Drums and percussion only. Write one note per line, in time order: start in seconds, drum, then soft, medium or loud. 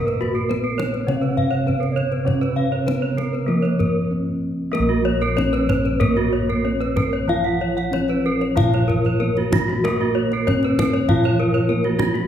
0.08 kendang slap soft
0.22 kendang slap soft
0.51 kendang slap soft
0.51 kendang high soft
0.79 kendang slap soft
0.79 kendang high soft
0.94 kendang slap soft
1.08 kendang high soft
1.23 kendang slap soft
1.38 kendang low soft
1.53 kendang slap soft
1.68 kendang low soft
1.83 kendang slap soft
1.97 kendang slap soft
2.12 kendang slap soft
2.28 kendang high soft
2.28 kendang low soft
2.43 kendang slap soft
2.58 kendang slap soft
2.88 kendang slap soft
2.88 kendang high soft
3.18 kendang slap soft
3.18 kendang high soft
3.35 kendang slap soft
3.65 kendang slap soft
3.80 kendang low soft
4.75 kendang high soft
5.23 kendang slap soft
5.38 kendang high soft
5.38 kendang low soft
5.54 kendang slap soft
5.69 kendang high medium
5.69 kendang low medium
5.86 kendang slap soft
6.01 kendang low medium
6.50 kendang slap soft
6.81 kendang slap soft
6.97 kendang high medium
6.97 kendang low medium
7.78 kendang slap soft
7.93 kendang high medium
8.08 kendang slap soft
8.41 kendang slap soft
8.57 kendang high medium
8.57 kendang low medium
8.74 kendang slap soft
8.89 kendang low medium
9.05 kendang slap soft
9.37 kendang slap soft
9.52 kendang high medium
9.52 kendang low medium
9.69 kendang slap soft
9.85 kendang high medium
10.32 kendang slap soft
10.48 kendang high medium
10.48 kendang low medium
10.63 kendang slap soft
10.79 kendang high medium
10.79 kendang low medium
10.94 kendang slap soft
11.09 kendang low medium
11.24 kendang slap soft
11.55 kendang slap soft
11.84 kendang slap soft
11.99 kendang high medium
11.99 kendang low medium
12.15 kendang slap soft